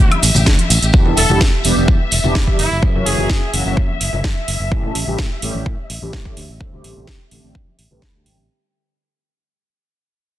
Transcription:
Already playing: trumpet section G4, string section E5
0.10 closed hi-hat, high conga, high woodblock
0.22 fingered electric bass A1, open hi-hat, tambourine, shaker
0.34 fingered electric bass A1, tambourine, low conga, shaker
0.46 fingered electric bass D2, kick, snare, closed hi-hat, tambourine, high conga, shaker
0.59 closed hi-hat, high conga
0.70 fingered electric bass A1, open hi-hat, tambourine, shaker
0.82 fingered electric bass A1, closed hi-hat, tambourine, shaker
0.93 fingered electric bass E2, analog polysynth E3 G3 B3 D4 G4, string section E5, kick, tambourine
1.05 analog polysynth E3 G3 B3 D4 A4, low conga
1.17 fingered electric bass E1, trumpet section A4, open hi-hat, tambourine
1.29 fingered electric bass E1, analog polysynth E3 G3 B3 D4 G4, tambourine, low conga
1.40 fingered electric bass E2, kick, snare, tambourine
1.64 fingered electric bass E1, analog polysynth E3 G3 B3 D4 G4, open hi-hat, tambourine
1.76 fingered electric bass E1, analog polysynth E3 G3 B3 D4 G4, tambourine, high conga
1.87 fingered electric bass E2, kick, tambourine
2.11 fingered electric bass E1, open hi-hat, tambourine
2.23 fingered electric bass E1, analog polysynth E3 G3 B3 D4 G4, tambourine, low conga
2.35 kick, snare, tambourine, high conga
2.47 kick
2.59 fingered electric bass F#1, trumpet section E4, open hi-hat, tambourine
2.71 fingered electric bass F#1, tambourine
2.82 fingered electric bass F#2, analog polysynth E3 F#3 A#3 C#4 G#4, kick
2.95 analog polysynth E3 F#3 A#3 C#4 F#4, low conga
3.06 fingered electric bass F#1, trumpet section G#4, open hi-hat, tambourine
3.17 fingered electric bass F#1, analog polysynth E3 F#3 A#3 C#4 F#4, tambourine, low conga
3.29 fingered electric bass F#2, kick, snare, tambourine
3.53 fingered electric bass F#1, analog polysynth E3 F#3 A#3 C#4 F#4, open hi-hat, tambourine
3.65 fingered electric bass F#1, analog polysynth E3 F#3 A#3 C#4 F#4, tambourine, high conga
3.77 fingered electric bass F#2, kick
3.88 high conga
4.00 fingered electric bass F#1, open hi-hat, tambourine
4.13 fingered electric bass F#1, tambourine, low conga
4.23 kick, snare, tambourine, high conga
4.47 fingered electric bass F#1, open hi-hat, tambourine
4.60 fingered electric bass F#1, tambourine
4.71 fingered electric bass A2, analog polysynth E3 G3 A3 C#4 G4, kick
4.83 analog polysynth E3 G3 A3 C#4 A4, low conga
4.95 fingered electric bass A1, open hi-hat, tambourine
5.07 fingered electric bass A1, analog polysynth E3 G3 A3 C#4 G4, tambourine, low conga
5.19 fingered electric bass A2, kick, snare
5.42 fingered electric bass A1, analog polysynth E3 G3 A3 C#4 G4, open hi-hat, tambourine
5.54 fingered electric bass A1, analog polysynth E3 G3 A3 C#4 G4, tambourine, high conga
5.66 fingered electric bass A2, kick
5.90 fingered electric bass A1, open hi-hat, tambourine
6.02 fingered electric bass A1, analog polysynth E3 G3 A3 C#4 G4, tambourine, low conga
6.13 fingered electric bass A2, kick, snare, tambourine, high conga
6.25 kick
6.37 fingered electric bass D2, open hi-hat, tambourine
6.49 fingered electric bass A1, tambourine
6.61 analog polysynth D3 G3 A3 C4 A4, kick
6.72 analog polysynth D3 G3 A3 C4 G4, low conga
6.84 fingered electric bass A1, open hi-hat, tambourine
6.96 fingered electric bass A1, analog polysynth D3 G3 A3 C4 G4, tambourine, low conga
7.07 kick, snare
7.31 fingered electric bass A1, analog polysynth D3 G3 A3 C4 G4, open hi-hat
7.43 fingered electric bass A1, analog polysynth D3 G3 A3 C4 G4, tambourine, high conga
7.55 kick
7.67 high conga
7.77 fingered electric bass A1, open hi-hat, tambourine
7.90 fingered electric bass A1, analog polysynth D3 G3 A3 C4 B4, tambourine, low conga
8.01 kick, snare, tambourine, high conga
8.14 analog polysynth D3 G3 A3 C4 G4
8.26 fingered electric bass A1, analog polysynth D3 G3 A3 C4 G4, open hi-hat
8.38 fingered electric bass A1

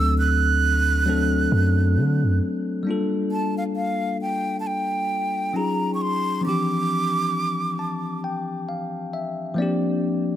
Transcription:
Already playing: 808-style bass D2, tine electric piano F#3 A3 C4 D4 A4, flute E6
0.19 flute F#6
1.06 tine electric piano F#3 A3 C4 D4 A4
1.52 808-style bass F#2
1.97 808-style bass D3
2.23 808-style bass F#2
2.83 tine electric piano G3 A#3 D4
2.89 tine electric piano F4 A4
3.32 flute A5
3.58 flute F5
3.76 flute F5
4.22 flute G5
4.60 flute A5
4.67 flute G5
5.53 tine electric piano F#3 C#4 D#4 F4 G#4, flute A#5
5.94 flute C#6
6.01 flute C6
6.41 tine electric piano F3 C4 D4
6.46 tine electric piano E3 G4, flute D6
7.79 tine electric piano A5
8.24 tine electric piano G5
8.69 tine electric piano F5
9.13 tine electric piano E5
9.54 tine electric piano F3 A#3 C4 D5
9.60 tine electric piano D4 G4

